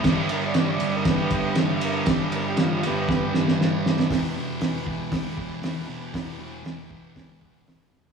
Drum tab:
RD |x-x-x-x-x-x-x-x-|x-x-x-x---------|----------------|----------------|
HH |----------------|----------------|o---o---o---o---|o---o---o---o---|
SD |o---o---o---o---|o---o---o-ooo-oo|o---o---o---o---|o---o---o---o-o-|
FT |----------------|----------------|----------------|---------------o|
BD |o-------o-o-----|o-------o-------|o-----o-o-o-----|o-----o-o-o-----|